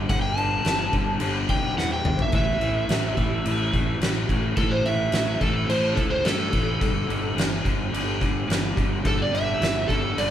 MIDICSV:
0, 0, Header, 1, 5, 480
1, 0, Start_track
1, 0, Tempo, 559701
1, 84, Time_signature, 4, 2, 24, 8
1, 8838, End_track
2, 0, Start_track
2, 0, Title_t, "Electric slide guitar"
2, 0, Program_c, 0, 29
2, 87, Note_on_c, 0, 78, 99
2, 183, Note_off_c, 0, 78, 0
2, 187, Note_on_c, 0, 79, 89
2, 320, Note_off_c, 0, 79, 0
2, 320, Note_on_c, 0, 81, 91
2, 1254, Note_off_c, 0, 81, 0
2, 1285, Note_on_c, 0, 79, 87
2, 1518, Note_off_c, 0, 79, 0
2, 1525, Note_on_c, 0, 78, 107
2, 1642, Note_off_c, 0, 78, 0
2, 1657, Note_on_c, 0, 79, 80
2, 1884, Note_off_c, 0, 79, 0
2, 1903, Note_on_c, 0, 76, 80
2, 2006, Note_off_c, 0, 76, 0
2, 2017, Note_on_c, 0, 76, 96
2, 3417, Note_off_c, 0, 76, 0
2, 3923, Note_on_c, 0, 69, 98
2, 4038, Note_on_c, 0, 72, 71
2, 4041, Note_off_c, 0, 69, 0
2, 4158, Note_off_c, 0, 72, 0
2, 4163, Note_on_c, 0, 76, 103
2, 4630, Note_off_c, 0, 76, 0
2, 4639, Note_on_c, 0, 69, 91
2, 4876, Note_off_c, 0, 69, 0
2, 4884, Note_on_c, 0, 72, 82
2, 5105, Note_on_c, 0, 69, 76
2, 5118, Note_off_c, 0, 72, 0
2, 5232, Note_off_c, 0, 69, 0
2, 5233, Note_on_c, 0, 72, 100
2, 5356, Note_off_c, 0, 72, 0
2, 5360, Note_on_c, 0, 69, 115
2, 6294, Note_off_c, 0, 69, 0
2, 7777, Note_on_c, 0, 69, 100
2, 7887, Note_off_c, 0, 69, 0
2, 7907, Note_on_c, 0, 74, 76
2, 8012, Note_off_c, 0, 74, 0
2, 8017, Note_on_c, 0, 76, 95
2, 8471, Note_on_c, 0, 69, 95
2, 8476, Note_off_c, 0, 76, 0
2, 8709, Note_off_c, 0, 69, 0
2, 8732, Note_on_c, 0, 74, 93
2, 8838, Note_off_c, 0, 74, 0
2, 8838, End_track
3, 0, Start_track
3, 0, Title_t, "Overdriven electric guitar"
3, 0, Program_c, 1, 29
3, 75, Note_on_c, 1, 43, 93
3, 89, Note_on_c, 1, 50, 90
3, 296, Note_off_c, 1, 43, 0
3, 303, Note_off_c, 1, 50, 0
3, 318, Note_on_c, 1, 43, 69
3, 325, Note_on_c, 1, 50, 86
3, 537, Note_off_c, 1, 43, 0
3, 541, Note_off_c, 1, 50, 0
3, 558, Note_on_c, 1, 43, 78
3, 563, Note_on_c, 1, 52, 78
3, 777, Note_off_c, 1, 43, 0
3, 780, Note_off_c, 1, 52, 0
3, 804, Note_on_c, 1, 43, 75
3, 806, Note_on_c, 1, 50, 90
3, 1019, Note_off_c, 1, 43, 0
3, 1021, Note_off_c, 1, 50, 0
3, 1029, Note_on_c, 1, 43, 84
3, 1032, Note_on_c, 1, 50, 90
3, 1253, Note_off_c, 1, 43, 0
3, 1254, Note_off_c, 1, 50, 0
3, 1276, Note_on_c, 1, 43, 76
3, 1289, Note_on_c, 1, 50, 78
3, 1497, Note_off_c, 1, 43, 0
3, 1503, Note_off_c, 1, 50, 0
3, 1514, Note_on_c, 1, 43, 82
3, 1517, Note_on_c, 1, 52, 92
3, 1736, Note_off_c, 1, 43, 0
3, 1737, Note_off_c, 1, 52, 0
3, 1764, Note_on_c, 1, 43, 77
3, 1766, Note_on_c, 1, 50, 73
3, 1981, Note_off_c, 1, 43, 0
3, 1982, Note_off_c, 1, 50, 0
3, 1994, Note_on_c, 1, 45, 87
3, 1996, Note_on_c, 1, 52, 102
3, 2216, Note_off_c, 1, 45, 0
3, 2217, Note_off_c, 1, 52, 0
3, 2232, Note_on_c, 1, 45, 67
3, 2243, Note_on_c, 1, 52, 79
3, 2455, Note_off_c, 1, 45, 0
3, 2460, Note_off_c, 1, 52, 0
3, 2475, Note_on_c, 1, 45, 74
3, 2478, Note_on_c, 1, 54, 98
3, 2697, Note_off_c, 1, 45, 0
3, 2698, Note_off_c, 1, 54, 0
3, 2725, Note_on_c, 1, 45, 78
3, 2726, Note_on_c, 1, 52, 90
3, 2941, Note_off_c, 1, 45, 0
3, 2942, Note_off_c, 1, 52, 0
3, 2967, Note_on_c, 1, 45, 72
3, 2972, Note_on_c, 1, 52, 91
3, 3182, Note_off_c, 1, 45, 0
3, 3185, Note_off_c, 1, 52, 0
3, 3207, Note_on_c, 1, 52, 78
3, 3210, Note_on_c, 1, 45, 66
3, 3423, Note_off_c, 1, 52, 0
3, 3424, Note_off_c, 1, 45, 0
3, 3443, Note_on_c, 1, 45, 89
3, 3447, Note_on_c, 1, 54, 84
3, 3661, Note_off_c, 1, 45, 0
3, 3663, Note_off_c, 1, 54, 0
3, 3685, Note_on_c, 1, 45, 70
3, 3692, Note_on_c, 1, 52, 76
3, 3901, Note_off_c, 1, 45, 0
3, 3905, Note_off_c, 1, 52, 0
3, 3927, Note_on_c, 1, 45, 91
3, 3932, Note_on_c, 1, 52, 112
3, 4143, Note_off_c, 1, 45, 0
3, 4145, Note_off_c, 1, 52, 0
3, 4171, Note_on_c, 1, 45, 79
3, 4177, Note_on_c, 1, 52, 77
3, 4385, Note_off_c, 1, 45, 0
3, 4387, Note_off_c, 1, 52, 0
3, 4406, Note_on_c, 1, 45, 75
3, 4407, Note_on_c, 1, 54, 98
3, 4622, Note_off_c, 1, 45, 0
3, 4623, Note_off_c, 1, 54, 0
3, 4643, Note_on_c, 1, 45, 82
3, 4655, Note_on_c, 1, 52, 81
3, 4861, Note_off_c, 1, 45, 0
3, 4867, Note_off_c, 1, 52, 0
3, 4879, Note_on_c, 1, 45, 83
3, 4889, Note_on_c, 1, 52, 95
3, 5099, Note_off_c, 1, 45, 0
3, 5104, Note_off_c, 1, 52, 0
3, 5127, Note_on_c, 1, 45, 73
3, 5129, Note_on_c, 1, 52, 70
3, 5342, Note_off_c, 1, 45, 0
3, 5344, Note_off_c, 1, 52, 0
3, 5364, Note_on_c, 1, 45, 83
3, 5372, Note_on_c, 1, 54, 95
3, 5581, Note_off_c, 1, 45, 0
3, 5585, Note_off_c, 1, 54, 0
3, 5602, Note_on_c, 1, 52, 86
3, 5603, Note_on_c, 1, 45, 65
3, 5820, Note_off_c, 1, 52, 0
3, 5821, Note_off_c, 1, 45, 0
3, 5841, Note_on_c, 1, 43, 81
3, 5845, Note_on_c, 1, 50, 90
3, 6059, Note_off_c, 1, 43, 0
3, 6061, Note_off_c, 1, 50, 0
3, 6075, Note_on_c, 1, 43, 81
3, 6083, Note_on_c, 1, 50, 80
3, 6296, Note_off_c, 1, 43, 0
3, 6300, Note_off_c, 1, 50, 0
3, 6313, Note_on_c, 1, 43, 86
3, 6319, Note_on_c, 1, 52, 107
3, 6535, Note_off_c, 1, 43, 0
3, 6538, Note_off_c, 1, 52, 0
3, 6550, Note_on_c, 1, 43, 82
3, 6555, Note_on_c, 1, 50, 83
3, 6773, Note_off_c, 1, 43, 0
3, 6776, Note_off_c, 1, 50, 0
3, 6789, Note_on_c, 1, 43, 71
3, 6798, Note_on_c, 1, 50, 92
3, 7013, Note_off_c, 1, 43, 0
3, 7017, Note_off_c, 1, 50, 0
3, 7038, Note_on_c, 1, 43, 73
3, 7044, Note_on_c, 1, 50, 79
3, 7257, Note_off_c, 1, 43, 0
3, 7260, Note_off_c, 1, 50, 0
3, 7268, Note_on_c, 1, 43, 97
3, 7268, Note_on_c, 1, 52, 93
3, 7492, Note_off_c, 1, 43, 0
3, 7492, Note_off_c, 1, 52, 0
3, 7512, Note_on_c, 1, 50, 86
3, 7513, Note_on_c, 1, 43, 77
3, 7734, Note_off_c, 1, 50, 0
3, 7735, Note_off_c, 1, 43, 0
3, 7749, Note_on_c, 1, 43, 106
3, 7752, Note_on_c, 1, 50, 94
3, 7972, Note_off_c, 1, 43, 0
3, 7974, Note_off_c, 1, 50, 0
3, 7994, Note_on_c, 1, 43, 80
3, 7999, Note_on_c, 1, 50, 79
3, 8215, Note_off_c, 1, 43, 0
3, 8217, Note_off_c, 1, 50, 0
3, 8238, Note_on_c, 1, 43, 80
3, 8239, Note_on_c, 1, 52, 93
3, 8456, Note_off_c, 1, 43, 0
3, 8457, Note_off_c, 1, 52, 0
3, 8485, Note_on_c, 1, 43, 72
3, 8488, Note_on_c, 1, 50, 94
3, 8700, Note_off_c, 1, 43, 0
3, 8701, Note_off_c, 1, 50, 0
3, 8715, Note_on_c, 1, 43, 80
3, 8719, Note_on_c, 1, 50, 99
3, 8838, Note_off_c, 1, 43, 0
3, 8838, Note_off_c, 1, 50, 0
3, 8838, End_track
4, 0, Start_track
4, 0, Title_t, "Fingered electric bass"
4, 0, Program_c, 2, 33
4, 86, Note_on_c, 2, 31, 96
4, 493, Note_off_c, 2, 31, 0
4, 565, Note_on_c, 2, 31, 86
4, 768, Note_off_c, 2, 31, 0
4, 799, Note_on_c, 2, 31, 85
4, 1005, Note_off_c, 2, 31, 0
4, 1035, Note_on_c, 2, 31, 100
4, 1243, Note_off_c, 2, 31, 0
4, 1280, Note_on_c, 2, 35, 87
4, 1486, Note_off_c, 2, 35, 0
4, 1510, Note_on_c, 2, 40, 85
4, 1720, Note_off_c, 2, 40, 0
4, 1750, Note_on_c, 2, 31, 89
4, 1960, Note_off_c, 2, 31, 0
4, 1999, Note_on_c, 2, 33, 100
4, 2206, Note_off_c, 2, 33, 0
4, 2233, Note_on_c, 2, 33, 88
4, 2442, Note_off_c, 2, 33, 0
4, 2474, Note_on_c, 2, 33, 92
4, 2683, Note_off_c, 2, 33, 0
4, 2724, Note_on_c, 2, 33, 86
4, 2928, Note_off_c, 2, 33, 0
4, 2964, Note_on_c, 2, 33, 90
4, 3372, Note_off_c, 2, 33, 0
4, 3434, Note_on_c, 2, 33, 86
4, 3643, Note_off_c, 2, 33, 0
4, 3681, Note_on_c, 2, 33, 94
4, 3887, Note_off_c, 2, 33, 0
4, 3924, Note_on_c, 2, 33, 101
4, 4332, Note_off_c, 2, 33, 0
4, 4395, Note_on_c, 2, 33, 92
4, 4603, Note_off_c, 2, 33, 0
4, 4645, Note_on_c, 2, 33, 93
4, 4849, Note_off_c, 2, 33, 0
4, 4880, Note_on_c, 2, 33, 103
4, 5086, Note_off_c, 2, 33, 0
4, 5122, Note_on_c, 2, 37, 97
4, 5327, Note_off_c, 2, 37, 0
4, 5359, Note_on_c, 2, 43, 88
4, 5566, Note_off_c, 2, 43, 0
4, 5602, Note_on_c, 2, 33, 90
4, 5807, Note_off_c, 2, 33, 0
4, 5846, Note_on_c, 2, 31, 92
4, 6050, Note_off_c, 2, 31, 0
4, 6088, Note_on_c, 2, 31, 94
4, 6290, Note_off_c, 2, 31, 0
4, 6313, Note_on_c, 2, 31, 86
4, 6522, Note_off_c, 2, 31, 0
4, 6565, Note_on_c, 2, 31, 94
4, 6768, Note_off_c, 2, 31, 0
4, 6803, Note_on_c, 2, 31, 98
4, 7211, Note_off_c, 2, 31, 0
4, 7280, Note_on_c, 2, 31, 94
4, 7485, Note_off_c, 2, 31, 0
4, 7523, Note_on_c, 2, 31, 92
4, 7727, Note_off_c, 2, 31, 0
4, 7765, Note_on_c, 2, 31, 100
4, 8171, Note_off_c, 2, 31, 0
4, 8244, Note_on_c, 2, 31, 96
4, 8447, Note_off_c, 2, 31, 0
4, 8486, Note_on_c, 2, 31, 97
4, 8688, Note_off_c, 2, 31, 0
4, 8721, Note_on_c, 2, 31, 91
4, 8838, Note_off_c, 2, 31, 0
4, 8838, End_track
5, 0, Start_track
5, 0, Title_t, "Drums"
5, 81, Note_on_c, 9, 36, 117
5, 82, Note_on_c, 9, 49, 82
5, 167, Note_off_c, 9, 36, 0
5, 167, Note_off_c, 9, 49, 0
5, 322, Note_on_c, 9, 49, 61
5, 408, Note_off_c, 9, 49, 0
5, 554, Note_on_c, 9, 49, 80
5, 568, Note_on_c, 9, 38, 102
5, 640, Note_off_c, 9, 49, 0
5, 654, Note_off_c, 9, 38, 0
5, 796, Note_on_c, 9, 49, 54
5, 799, Note_on_c, 9, 36, 72
5, 881, Note_off_c, 9, 49, 0
5, 885, Note_off_c, 9, 36, 0
5, 1027, Note_on_c, 9, 49, 92
5, 1113, Note_off_c, 9, 49, 0
5, 1276, Note_on_c, 9, 49, 63
5, 1279, Note_on_c, 9, 36, 87
5, 1362, Note_off_c, 9, 49, 0
5, 1365, Note_off_c, 9, 36, 0
5, 1530, Note_on_c, 9, 38, 67
5, 1616, Note_off_c, 9, 38, 0
5, 1759, Note_on_c, 9, 45, 85
5, 1844, Note_off_c, 9, 45, 0
5, 1878, Note_on_c, 9, 43, 91
5, 1963, Note_off_c, 9, 43, 0
5, 1991, Note_on_c, 9, 49, 73
5, 1999, Note_on_c, 9, 36, 115
5, 2077, Note_off_c, 9, 49, 0
5, 2085, Note_off_c, 9, 36, 0
5, 2238, Note_on_c, 9, 49, 61
5, 2324, Note_off_c, 9, 49, 0
5, 2478, Note_on_c, 9, 49, 86
5, 2491, Note_on_c, 9, 38, 123
5, 2563, Note_off_c, 9, 49, 0
5, 2577, Note_off_c, 9, 38, 0
5, 2720, Note_on_c, 9, 36, 70
5, 2723, Note_on_c, 9, 49, 47
5, 2806, Note_off_c, 9, 36, 0
5, 2809, Note_off_c, 9, 49, 0
5, 2962, Note_on_c, 9, 49, 83
5, 3048, Note_off_c, 9, 49, 0
5, 3203, Note_on_c, 9, 36, 88
5, 3206, Note_on_c, 9, 49, 48
5, 3288, Note_off_c, 9, 36, 0
5, 3291, Note_off_c, 9, 49, 0
5, 3443, Note_on_c, 9, 49, 84
5, 3456, Note_on_c, 9, 38, 119
5, 3529, Note_off_c, 9, 49, 0
5, 3542, Note_off_c, 9, 38, 0
5, 3681, Note_on_c, 9, 36, 75
5, 3686, Note_on_c, 9, 49, 59
5, 3767, Note_off_c, 9, 36, 0
5, 3771, Note_off_c, 9, 49, 0
5, 3915, Note_on_c, 9, 49, 75
5, 3919, Note_on_c, 9, 36, 105
5, 4001, Note_off_c, 9, 49, 0
5, 4005, Note_off_c, 9, 36, 0
5, 4164, Note_on_c, 9, 49, 59
5, 4250, Note_off_c, 9, 49, 0
5, 4391, Note_on_c, 9, 49, 86
5, 4405, Note_on_c, 9, 38, 123
5, 4477, Note_off_c, 9, 49, 0
5, 4491, Note_off_c, 9, 38, 0
5, 4640, Note_on_c, 9, 49, 57
5, 4641, Note_on_c, 9, 36, 77
5, 4725, Note_off_c, 9, 49, 0
5, 4726, Note_off_c, 9, 36, 0
5, 4885, Note_on_c, 9, 49, 87
5, 4971, Note_off_c, 9, 49, 0
5, 5121, Note_on_c, 9, 49, 55
5, 5123, Note_on_c, 9, 36, 84
5, 5207, Note_off_c, 9, 49, 0
5, 5209, Note_off_c, 9, 36, 0
5, 5359, Note_on_c, 9, 49, 94
5, 5372, Note_on_c, 9, 38, 107
5, 5444, Note_off_c, 9, 49, 0
5, 5458, Note_off_c, 9, 38, 0
5, 5597, Note_on_c, 9, 49, 61
5, 5602, Note_on_c, 9, 36, 78
5, 5683, Note_off_c, 9, 49, 0
5, 5687, Note_off_c, 9, 36, 0
5, 5844, Note_on_c, 9, 36, 105
5, 5849, Note_on_c, 9, 49, 78
5, 5929, Note_off_c, 9, 36, 0
5, 5935, Note_off_c, 9, 49, 0
5, 6090, Note_on_c, 9, 49, 64
5, 6176, Note_off_c, 9, 49, 0
5, 6329, Note_on_c, 9, 49, 87
5, 6343, Note_on_c, 9, 38, 116
5, 6415, Note_off_c, 9, 49, 0
5, 6429, Note_off_c, 9, 38, 0
5, 6563, Note_on_c, 9, 36, 74
5, 6567, Note_on_c, 9, 49, 53
5, 6649, Note_off_c, 9, 36, 0
5, 6653, Note_off_c, 9, 49, 0
5, 6812, Note_on_c, 9, 49, 85
5, 6898, Note_off_c, 9, 49, 0
5, 7045, Note_on_c, 9, 36, 85
5, 7054, Note_on_c, 9, 49, 56
5, 7130, Note_off_c, 9, 36, 0
5, 7140, Note_off_c, 9, 49, 0
5, 7289, Note_on_c, 9, 49, 78
5, 7303, Note_on_c, 9, 38, 104
5, 7375, Note_off_c, 9, 49, 0
5, 7389, Note_off_c, 9, 38, 0
5, 7524, Note_on_c, 9, 36, 86
5, 7531, Note_on_c, 9, 49, 56
5, 7610, Note_off_c, 9, 36, 0
5, 7617, Note_off_c, 9, 49, 0
5, 7761, Note_on_c, 9, 49, 76
5, 7762, Note_on_c, 9, 36, 115
5, 7847, Note_off_c, 9, 49, 0
5, 7848, Note_off_c, 9, 36, 0
5, 8015, Note_on_c, 9, 49, 59
5, 8101, Note_off_c, 9, 49, 0
5, 8248, Note_on_c, 9, 49, 77
5, 8262, Note_on_c, 9, 38, 120
5, 8334, Note_off_c, 9, 49, 0
5, 8347, Note_off_c, 9, 38, 0
5, 8483, Note_on_c, 9, 36, 67
5, 8490, Note_on_c, 9, 49, 55
5, 8569, Note_off_c, 9, 36, 0
5, 8575, Note_off_c, 9, 49, 0
5, 8730, Note_on_c, 9, 49, 86
5, 8815, Note_off_c, 9, 49, 0
5, 8838, End_track
0, 0, End_of_file